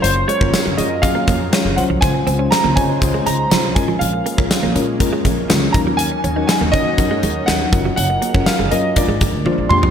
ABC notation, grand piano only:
X:1
M:4/4
L:1/8
Q:1/4=121
K:Gblyd
V:1 name="Grand piano"
c d2 e f3 g | a2 b a2 b2 a | f3 z4 b | a2 a e3 g2 |
g2 f e =d3 c' |]